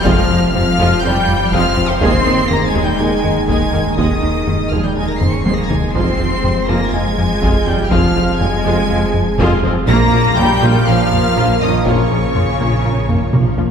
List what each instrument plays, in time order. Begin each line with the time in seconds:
Already playing: sub bass F1, trombone section C3 F3, synth drone F3 C4 F4 C5
0.04 tuba F1, double bass section F2, analog synth bass F2, french horn section F3, cello section F3, synth arpeggio sound F3, viola section G#3 F4, violin section F5 F6, taiko
0.29 tuba F1, double bass section F2, analog synth bass F2, viola section F3 C4, synth arpeggio sound F4
0.53 tuba F1, double bass section F2, viola section C3 G#3, french horn section F3, cello section F3, analog synth bass F3, synth arpeggio sound C4, violin section F5 F6, taiko low-mid
0.79 tuba F1, double bass section F2, analog synth bass F2, synth arpeggio sound F3, viola section G#3 F4
1.03 tuba F1, double bass section F2, analog synth bass F2, viola section F3 C4, french horn section G3, cello section G3, synth arpeggio sound F4, violin section G5 G6
1.28 analog synth bass F3, taiko low-mid
1.52 tuba F1, analog synth bass F2, double bass section F2, french horn section F3, synth arpeggio sound F3, cello section F3, viola section G#3 F4, violin section F5 F6, taiko
1.77 tuba F1, double bass section F2, analog synth bass F3, viola section F3 C4, synth arpeggio sound C4, taiko low-mid
1.89 french horn section C3, cello section C3, violin section C5 C6
2.01 sub bass D#1, analog synth bass D#2, tuba D#2, double bass section D#2, synth arpeggio sound D#3, trombone section D#3 G#3, viola section G#3 G#4, synth drone G#3 A#3 D#4 G#4, cello section C4, french horn section C4, violin section C6 C7, taiko
2.26 double bass section D#2, analog synth bass D#2, tuba D#2, viola section D#3 D#4, synth arpeggio sound D#4
2.50 double bass section D#2, tuba D#2, viola section D#3 A#3, analog synth bass D#3, french horn section A#3, cello section A#3, synth arpeggio sound A#3, violin section A#5 A#6, taiko low-mid
2.67 cello section G#3, french horn section G#3, violin section G#5 G#6
2.74 double bass section D#2, analog synth bass D#2, tuba D#2, synth arpeggio sound D#3, viola section G#3 G#4
2.82 french horn section G3, cello section G3, violin section G5 G6
2.99 tuba D#2, double bass section D#2, analog synth bass D#2, viola section D#3 D#4, french horn section G#3, cello section G#3, synth arpeggio sound D#4, violin section G#5 G#6
3.24 analog synth bass D#3, taiko low-mid
3.48 double bass section D#2, tuba D#2, analog synth bass D#2, synth arpeggio sound D#3, french horn section G#3, cello section G#3, viola section G#3 G#4, violin section G#5 G#6, taiko
3.73 double bass section D#2, tuba D#2, analog synth bass D#3, viola section D#3 D#4, synth arpeggio sound A#3, taiko low-mid
3.97 double bass section D#2, tuba D#2, analog synth bass D#2, french horn section D#3, cello section D#3, synth arpeggio sound D#3, viola section G#3 G#4, violin section D#5 D#6, taiko
4.22 double bass section D#2, analog synth bass D#2, tuba D#2, viola section D#3 D#4, synth arpeggio sound D#4
4.47 double bass section D#2, tuba D#2, viola section D#3 A#3, analog synth bass D#3, synth arpeggio sound A#3, taiko low-mid
4.71 double bass section D#2, tuba D#2, analog synth bass D#2, synth arpeggio sound D#3, french horn section F3, cello section F3, viola section G#3 G#4, violin section F5 F6
4.82 french horn section G3, cello section G3, violin section G5 G6
4.94 tuba D#2, double bass section D#2, analog synth bass D#2, viola section D#3 D#4, french horn section G#3, cello section G#3, synth arpeggio sound D#4, violin section G#5 G#6
5.08 french horn section A#3, cello section A#3, violin section A#5 A#6
5.20 analog synth bass D#3, french horn section C4, cello section C4, violin section C6 C7, taiko low-mid
5.32 french horn section C#4, cello section C#4, violin section C#6 C#7
5.44 analog synth bass D#2, double bass section D#2, tuba D#2, synth arpeggio sound D#3, viola section G#3 G#4, french horn section C4, cello section C4, violin section C6 C7, taiko high
5.56 french horn section A#3, cello section A#3, violin section A#5 A#6
5.69 double bass section D#2, tuba D#2, analog synth bass D#3, viola section D#3 D#4, cello section G#3, french horn section G#3, synth arpeggio sound A#3, violin section G#5 G#6, taiko low
5.94 sub bass F1, tuba F1, double bass section F2, analog synth bass F2, trombone section F3 G#3, synth arpeggio sound F3, synth drone F3 C4 F4 G#4, viola section G#3 F4, cello section C4, french horn section C4, violin section C6 C7, taiko
6.18 tuba F1, double bass section F2, analog synth bass F2, viola section F3 C4, synth arpeggio sound F4
6.44 tuba F1, double bass section F2, viola section C3 G#3, analog synth bass F3, synth arpeggio sound C4, taiko low-mid
6.68 tuba F1, double bass section F2, analog synth bass F2, synth arpeggio sound F3, viola section G#3 F4, cello section A#3, french horn section A#3, violin section A#5 A#6
6.93 tuba F1, double bass section F2, analog synth bass F2, viola section F3 C4, cello section G#3, french horn section G#3, synth arpeggio sound F4, violin section G#5 G#6
7.18 analog synth bass F3, taiko low-mid
7.42 tuba F1, analog synth bass F2, double bass section F2, synth arpeggio sound F3, viola section G#3 F4, taiko
7.67 tuba F1, double bass section F2, viola section F3 C4, analog synth bass F3, cello section G3, french horn section G3, synth arpeggio sound C4, violin section G5 G6, taiko low-mid
7.91 tuba F1, analog synth bass F2, double bass section F2, synth arpeggio sound F3, cello section F3, french horn section F3, viola section G#3 F4, violin section F5 F6, taiko
8.16 tuba F1, double bass section F2, analog synth bass F2, viola section F3 C4, synth arpeggio sound F4
8.41 tuba F1, double bass section F2, viola section C3 G#3, analog synth bass F3, french horn section G#3, cello section G#3, synth arpeggio sound C4, violin section G#5 G#6, taiko low-mid
8.65 tuba F1, double bass section F2, analog synth bass F2, synth arpeggio sound F3, viola section G#3 F4
8.89 tuba F1, double bass section F2, analog synth bass F2, viola section F3 C4, synth arpeggio sound F4
9.14 analog synth bass F3, taiko low-mid
9.38 tuba F1, double bass section F2, analog synth bass F2, synth arpeggio sound F3, viola section G#3 F4, taiko
9.63 tuba F1, double bass section F2, analog synth bass F3, viola section F3 C4, synth arpeggio sound C4, taiko low-mid
9.87 double bass section A#1, sub bass A#1, tuba A#1, analog synth bass A#2, trombone section F3 A#3, synth drone F3 A#3 F4 A#4, french horn section A#3, synth arpeggio sound A#3, viola section A#3 F4, cello section A#3, violin section A#5 A#6, taiko
10.12 double bass section A#1, tuba A#1, analog synth bass A#2, viola section F3 C#4, synth arpeggio sound A#4
10.36 double bass section A#1, tuba A#1, viola section C#3 A#3, french horn section G3, cello section G3, analog synth bass A#3, synth arpeggio sound F4, violin section G5 G6, taiko low-mid
10.62 double bass section A#1, tuba A#1, analog synth bass A#2, synth arpeggio sound A#3, viola section A#3 F4
10.87 tuba A#1, double bass section A#1, analog synth bass A#2, french horn section F3, cello section F3, viola section F3 C#4, synth arpeggio sound A#4, violin section F5 F6
11.12 analog synth bass A#3, taiko low-mid
11.36 double bass section A#1, tuba A#1, analog synth bass A#2, synth arpeggio sound A#3, viola section A#3 F4, taiko
11.61 double bass section A#1, tuba A#1, french horn section D#3, cello section D#3, viola section F3 C#4, analog synth bass A#3, synth arpeggio sound F4, violin section D#5 D#6, taiko low-mid
11.86 double bass section A#1, tuba A#1, analog synth bass A#2, french horn section C#3, cello section C#3, viola section A#3 F4, synth arpeggio sound A#3, violin section C#5 C#6, taiko
12.11 double bass section A#1, tuba A#1, analog synth bass A#2, viola section F3 C#4, synth arpeggio sound A#4
12.35 double bass section A#1, tuba A#1, viola section C#3, analog synth bass A#3, synth arpeggio sound F4, taiko low-mid
12.60 double bass section A#1, tuba A#1, analog synth bass A#2, synth arpeggio sound A#3
12.84 double bass section A#1, tuba A#1, analog synth bass A#2, synth arpeggio sound A#4
13.09 viola section D#3, analog synth bass A#3, taiko low-mid
13.33 double bass section A#1, tuba A#1, analog synth bass A#2, viola section F3, synth arpeggio sound A#3, taiko mid
13.58 double bass section A#1, tuba A#1, analog synth bass A#3, synth arpeggio sound F4, taiko low